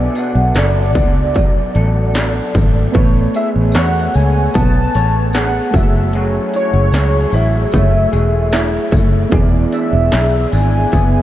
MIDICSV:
0, 0, Header, 1, 6, 480
1, 0, Start_track
1, 0, Key_signature, 3, "major"
1, 0, Tempo, 797872
1, 1774, Time_signature, 4, 2, 24, 8
1, 6750, End_track
2, 0, Start_track
2, 0, Title_t, "Soft synth lead"
2, 0, Program_c, 0, 80
2, 0, Note_on_c, 0, 74, 99
2, 110, Note_on_c, 0, 78, 86
2, 119, Note_off_c, 0, 74, 0
2, 349, Note_on_c, 0, 74, 82
2, 358, Note_off_c, 0, 78, 0
2, 1542, Note_off_c, 0, 74, 0
2, 2020, Note_on_c, 0, 76, 84
2, 2104, Note_off_c, 0, 76, 0
2, 2251, Note_on_c, 0, 78, 94
2, 2497, Note_on_c, 0, 80, 93
2, 2506, Note_off_c, 0, 78, 0
2, 2730, Note_off_c, 0, 80, 0
2, 2733, Note_on_c, 0, 81, 114
2, 3189, Note_off_c, 0, 81, 0
2, 3213, Note_on_c, 0, 78, 107
2, 3464, Note_on_c, 0, 76, 89
2, 3473, Note_off_c, 0, 78, 0
2, 3698, Note_on_c, 0, 73, 97
2, 3707, Note_off_c, 0, 76, 0
2, 3935, Note_off_c, 0, 73, 0
2, 3947, Note_on_c, 0, 73, 88
2, 4421, Note_on_c, 0, 76, 100
2, 4430, Note_off_c, 0, 73, 0
2, 5376, Note_off_c, 0, 76, 0
2, 5854, Note_on_c, 0, 76, 95
2, 6323, Note_on_c, 0, 80, 112
2, 6332, Note_off_c, 0, 76, 0
2, 6750, Note_off_c, 0, 80, 0
2, 6750, End_track
3, 0, Start_track
3, 0, Title_t, "Synth keys"
3, 0, Program_c, 1, 88
3, 0, Control_c, 1, 64, 127
3, 0, Note_on_c, 1, 59, 67
3, 0, Note_on_c, 1, 66, 64
3, 0, Note_on_c, 1, 69, 62
3, 0, Note_on_c, 1, 74, 80
3, 1741, Note_off_c, 1, 59, 0
3, 1746, Note_off_c, 1, 66, 0
3, 1751, Note_off_c, 1, 69, 0
3, 1758, Note_on_c, 1, 59, 74
3, 1765, Note_on_c, 1, 71, 76
3, 1775, Note_off_c, 1, 74, 0
3, 1776, Note_on_c, 1, 69, 79
3, 1781, Control_c, 1, 64, 0
3, 1785, Note_on_c, 1, 73, 92
3, 1887, Control_c, 1, 64, 127
3, 3421, Note_off_c, 1, 59, 0
3, 3425, Note_off_c, 1, 71, 0
3, 3431, Note_off_c, 1, 69, 0
3, 3435, Note_off_c, 1, 73, 0
3, 3435, Note_on_c, 1, 57, 62
3, 3448, Note_on_c, 1, 66, 55
3, 3456, Note_on_c, 1, 68, 59
3, 3461, Control_c, 1, 64, 0
3, 3467, Note_on_c, 1, 74, 53
3, 3499, Note_off_c, 1, 74, 0
3, 3508, Note_on_c, 1, 76, 65
3, 3571, Control_c, 1, 64, 127
3, 5338, Note_off_c, 1, 57, 0
3, 5345, Note_off_c, 1, 66, 0
3, 5349, Note_off_c, 1, 68, 0
3, 5375, Note_off_c, 1, 76, 0
3, 5592, Note_on_c, 1, 59, 77
3, 5602, Note_on_c, 1, 64, 73
3, 5614, Note_on_c, 1, 68, 76
3, 5619, Control_c, 1, 64, 0
3, 5626, Note_on_c, 1, 74, 86
3, 5741, Control_c, 1, 64, 127
3, 6750, Note_off_c, 1, 59, 0
3, 6750, Note_off_c, 1, 64, 0
3, 6750, Note_off_c, 1, 68, 0
3, 6750, Note_off_c, 1, 74, 0
3, 6750, End_track
4, 0, Start_track
4, 0, Title_t, "Clean electric guitar"
4, 0, Program_c, 2, 27
4, 0, Note_on_c, 2, 47, 88
4, 0, Note_on_c, 2, 59, 59
4, 0, Note_on_c, 2, 62, 58
4, 0, Note_on_c, 2, 69, 73
4, 92, Note_off_c, 2, 62, 0
4, 95, Note_on_c, 2, 62, 61
4, 335, Note_off_c, 2, 69, 0
4, 337, Note_on_c, 2, 69, 75
4, 356, Note_off_c, 2, 59, 0
4, 571, Note_off_c, 2, 62, 0
4, 578, Note_on_c, 2, 62, 70
4, 820, Note_on_c, 2, 54, 69
4, 1055, Note_off_c, 2, 69, 0
4, 1058, Note_on_c, 2, 69, 68
4, 1285, Note_off_c, 2, 62, 0
4, 1292, Note_on_c, 2, 62, 64
4, 1534, Note_on_c, 2, 57, 55
4, 1775, Note_off_c, 2, 54, 0
4, 1777, Note_off_c, 2, 57, 0
4, 1777, Note_on_c, 2, 57, 79
4, 1778, Note_off_c, 2, 47, 0
4, 1781, Note_on_c, 2, 73, 63
4, 1821, Note_off_c, 2, 62, 0
4, 2016, Note_off_c, 2, 69, 0
4, 2018, Note_on_c, 2, 68, 63
4, 2258, Note_off_c, 2, 73, 0
4, 2260, Note_on_c, 2, 73, 68
4, 2740, Note_on_c, 2, 59, 73
4, 2981, Note_off_c, 2, 73, 0
4, 2983, Note_on_c, 2, 73, 69
4, 3219, Note_off_c, 2, 68, 0
4, 3222, Note_on_c, 2, 68, 58
4, 3454, Note_off_c, 2, 57, 0
4, 3457, Note_on_c, 2, 54, 80
4, 3504, Note_off_c, 2, 59, 0
4, 3695, Note_off_c, 2, 54, 0
4, 3701, Note_on_c, 2, 54, 86
4, 3703, Note_off_c, 2, 68, 0
4, 3705, Note_on_c, 2, 68, 71
4, 3939, Note_on_c, 2, 64, 57
4, 4176, Note_off_c, 2, 68, 0
4, 4179, Note_on_c, 2, 68, 70
4, 4412, Note_off_c, 2, 64, 0
4, 4415, Note_on_c, 2, 64, 63
4, 4652, Note_on_c, 2, 57, 77
4, 4885, Note_off_c, 2, 68, 0
4, 4887, Note_on_c, 2, 68, 65
4, 5089, Note_off_c, 2, 73, 0
4, 5127, Note_off_c, 2, 64, 0
4, 5129, Note_on_c, 2, 64, 62
4, 5369, Note_off_c, 2, 57, 0
4, 5376, Note_on_c, 2, 57, 58
4, 5609, Note_off_c, 2, 54, 0
4, 5611, Note_off_c, 2, 68, 0
4, 5611, Note_on_c, 2, 52, 86
4, 5614, Note_on_c, 2, 68, 67
4, 5662, Note_off_c, 2, 57, 0
4, 5850, Note_off_c, 2, 64, 0
4, 5852, Note_on_c, 2, 62, 60
4, 6086, Note_off_c, 2, 68, 0
4, 6093, Note_on_c, 2, 68, 79
4, 6333, Note_off_c, 2, 62, 0
4, 6336, Note_on_c, 2, 62, 67
4, 6570, Note_on_c, 2, 59, 75
4, 6750, Note_off_c, 2, 52, 0
4, 6750, Note_off_c, 2, 59, 0
4, 6750, Note_off_c, 2, 62, 0
4, 6750, Note_off_c, 2, 68, 0
4, 6750, End_track
5, 0, Start_track
5, 0, Title_t, "Fingered electric bass"
5, 0, Program_c, 3, 33
5, 211, Note_on_c, 3, 35, 97
5, 308, Note_off_c, 3, 35, 0
5, 330, Note_on_c, 3, 30, 92
5, 573, Note_off_c, 3, 30, 0
5, 573, Note_on_c, 3, 37, 102
5, 815, Note_off_c, 3, 37, 0
5, 815, Note_on_c, 3, 35, 92
5, 1006, Note_off_c, 3, 35, 0
5, 1056, Note_on_c, 3, 33, 94
5, 1439, Note_off_c, 3, 33, 0
5, 1535, Note_on_c, 3, 32, 80
5, 1726, Note_off_c, 3, 32, 0
5, 1776, Note_on_c, 3, 33, 100
5, 1967, Note_off_c, 3, 33, 0
5, 2141, Note_on_c, 3, 33, 91
5, 2261, Note_off_c, 3, 33, 0
5, 2261, Note_on_c, 3, 40, 100
5, 2450, Note_off_c, 3, 40, 0
5, 2500, Note_on_c, 3, 37, 87
5, 2689, Note_off_c, 3, 37, 0
5, 2739, Note_on_c, 3, 35, 96
5, 2929, Note_off_c, 3, 35, 0
5, 2980, Note_on_c, 3, 33, 91
5, 3361, Note_off_c, 3, 33, 0
5, 3453, Note_on_c, 3, 30, 91
5, 3837, Note_off_c, 3, 30, 0
5, 4051, Note_on_c, 3, 30, 101
5, 4148, Note_off_c, 3, 30, 0
5, 4164, Note_on_c, 3, 37, 93
5, 4359, Note_off_c, 3, 37, 0
5, 4407, Note_on_c, 3, 33, 81
5, 4601, Note_off_c, 3, 33, 0
5, 4653, Note_on_c, 3, 30, 91
5, 4844, Note_off_c, 3, 30, 0
5, 4890, Note_on_c, 3, 28, 82
5, 5274, Note_off_c, 3, 28, 0
5, 5367, Note_on_c, 3, 30, 92
5, 5560, Note_off_c, 3, 30, 0
5, 5609, Note_on_c, 3, 28, 107
5, 5802, Note_off_c, 3, 28, 0
5, 5972, Note_on_c, 3, 28, 101
5, 6068, Note_off_c, 3, 28, 0
5, 6096, Note_on_c, 3, 35, 91
5, 6286, Note_off_c, 3, 35, 0
5, 6333, Note_on_c, 3, 32, 86
5, 6524, Note_off_c, 3, 32, 0
5, 6573, Note_on_c, 3, 30, 88
5, 6750, Note_off_c, 3, 30, 0
5, 6750, End_track
6, 0, Start_track
6, 0, Title_t, "Drums"
6, 92, Note_on_c, 9, 42, 73
6, 97, Note_on_c, 9, 54, 42
6, 152, Note_off_c, 9, 42, 0
6, 157, Note_off_c, 9, 54, 0
6, 329, Note_on_c, 9, 54, 75
6, 332, Note_on_c, 9, 42, 82
6, 334, Note_on_c, 9, 38, 106
6, 389, Note_off_c, 9, 54, 0
6, 392, Note_off_c, 9, 42, 0
6, 394, Note_off_c, 9, 38, 0
6, 571, Note_on_c, 9, 42, 58
6, 573, Note_on_c, 9, 36, 96
6, 573, Note_on_c, 9, 54, 47
6, 632, Note_off_c, 9, 42, 0
6, 633, Note_off_c, 9, 36, 0
6, 633, Note_off_c, 9, 54, 0
6, 809, Note_on_c, 9, 42, 78
6, 815, Note_on_c, 9, 54, 50
6, 817, Note_on_c, 9, 36, 88
6, 869, Note_off_c, 9, 42, 0
6, 875, Note_off_c, 9, 54, 0
6, 877, Note_off_c, 9, 36, 0
6, 1053, Note_on_c, 9, 42, 77
6, 1113, Note_off_c, 9, 42, 0
6, 1290, Note_on_c, 9, 54, 75
6, 1294, Note_on_c, 9, 38, 111
6, 1295, Note_on_c, 9, 42, 82
6, 1350, Note_off_c, 9, 54, 0
6, 1354, Note_off_c, 9, 38, 0
6, 1355, Note_off_c, 9, 42, 0
6, 1532, Note_on_c, 9, 42, 59
6, 1532, Note_on_c, 9, 54, 37
6, 1533, Note_on_c, 9, 36, 80
6, 1592, Note_off_c, 9, 42, 0
6, 1592, Note_off_c, 9, 54, 0
6, 1593, Note_off_c, 9, 36, 0
6, 1769, Note_on_c, 9, 42, 83
6, 1774, Note_on_c, 9, 36, 106
6, 1829, Note_off_c, 9, 42, 0
6, 1834, Note_off_c, 9, 36, 0
6, 2012, Note_on_c, 9, 42, 70
6, 2014, Note_on_c, 9, 54, 42
6, 2072, Note_off_c, 9, 42, 0
6, 2074, Note_off_c, 9, 54, 0
6, 2238, Note_on_c, 9, 54, 78
6, 2254, Note_on_c, 9, 42, 88
6, 2256, Note_on_c, 9, 38, 113
6, 2298, Note_off_c, 9, 54, 0
6, 2315, Note_off_c, 9, 42, 0
6, 2316, Note_off_c, 9, 38, 0
6, 2490, Note_on_c, 9, 54, 45
6, 2495, Note_on_c, 9, 42, 56
6, 2551, Note_off_c, 9, 54, 0
6, 2555, Note_off_c, 9, 42, 0
6, 2732, Note_on_c, 9, 54, 50
6, 2734, Note_on_c, 9, 42, 91
6, 2739, Note_on_c, 9, 36, 85
6, 2793, Note_off_c, 9, 54, 0
6, 2794, Note_off_c, 9, 42, 0
6, 2799, Note_off_c, 9, 36, 0
6, 2974, Note_on_c, 9, 54, 32
6, 2977, Note_on_c, 9, 42, 72
6, 3034, Note_off_c, 9, 54, 0
6, 3038, Note_off_c, 9, 42, 0
6, 3209, Note_on_c, 9, 54, 81
6, 3217, Note_on_c, 9, 38, 102
6, 3219, Note_on_c, 9, 42, 84
6, 3269, Note_off_c, 9, 54, 0
6, 3277, Note_off_c, 9, 38, 0
6, 3279, Note_off_c, 9, 42, 0
6, 3450, Note_on_c, 9, 42, 61
6, 3451, Note_on_c, 9, 54, 37
6, 3453, Note_on_c, 9, 36, 99
6, 3510, Note_off_c, 9, 42, 0
6, 3511, Note_off_c, 9, 54, 0
6, 3513, Note_off_c, 9, 36, 0
6, 3690, Note_on_c, 9, 42, 92
6, 3751, Note_off_c, 9, 42, 0
6, 3932, Note_on_c, 9, 42, 78
6, 3932, Note_on_c, 9, 54, 39
6, 3992, Note_off_c, 9, 42, 0
6, 3992, Note_off_c, 9, 54, 0
6, 4165, Note_on_c, 9, 54, 73
6, 4173, Note_on_c, 9, 42, 89
6, 4174, Note_on_c, 9, 38, 109
6, 4225, Note_off_c, 9, 54, 0
6, 4233, Note_off_c, 9, 42, 0
6, 4234, Note_off_c, 9, 38, 0
6, 4403, Note_on_c, 9, 54, 44
6, 4410, Note_on_c, 9, 42, 63
6, 4463, Note_off_c, 9, 54, 0
6, 4470, Note_off_c, 9, 42, 0
6, 4641, Note_on_c, 9, 54, 48
6, 4647, Note_on_c, 9, 42, 88
6, 4654, Note_on_c, 9, 36, 88
6, 4701, Note_off_c, 9, 54, 0
6, 4708, Note_off_c, 9, 42, 0
6, 4714, Note_off_c, 9, 36, 0
6, 4885, Note_on_c, 9, 54, 30
6, 4890, Note_on_c, 9, 42, 74
6, 4945, Note_off_c, 9, 54, 0
6, 4950, Note_off_c, 9, 42, 0
6, 5125, Note_on_c, 9, 54, 79
6, 5129, Note_on_c, 9, 38, 111
6, 5130, Note_on_c, 9, 42, 86
6, 5185, Note_off_c, 9, 54, 0
6, 5189, Note_off_c, 9, 38, 0
6, 5190, Note_off_c, 9, 42, 0
6, 5363, Note_on_c, 9, 42, 61
6, 5367, Note_on_c, 9, 36, 88
6, 5371, Note_on_c, 9, 54, 39
6, 5423, Note_off_c, 9, 42, 0
6, 5427, Note_off_c, 9, 36, 0
6, 5431, Note_off_c, 9, 54, 0
6, 5605, Note_on_c, 9, 42, 90
6, 5609, Note_on_c, 9, 36, 103
6, 5665, Note_off_c, 9, 42, 0
6, 5669, Note_off_c, 9, 36, 0
6, 5851, Note_on_c, 9, 42, 80
6, 5851, Note_on_c, 9, 54, 44
6, 5911, Note_off_c, 9, 42, 0
6, 5912, Note_off_c, 9, 54, 0
6, 6086, Note_on_c, 9, 54, 80
6, 6087, Note_on_c, 9, 42, 85
6, 6089, Note_on_c, 9, 38, 111
6, 6146, Note_off_c, 9, 54, 0
6, 6147, Note_off_c, 9, 42, 0
6, 6149, Note_off_c, 9, 38, 0
6, 6330, Note_on_c, 9, 42, 59
6, 6333, Note_on_c, 9, 54, 49
6, 6390, Note_off_c, 9, 42, 0
6, 6393, Note_off_c, 9, 54, 0
6, 6568, Note_on_c, 9, 42, 93
6, 6571, Note_on_c, 9, 54, 49
6, 6574, Note_on_c, 9, 36, 73
6, 6628, Note_off_c, 9, 42, 0
6, 6632, Note_off_c, 9, 54, 0
6, 6634, Note_off_c, 9, 36, 0
6, 6750, End_track
0, 0, End_of_file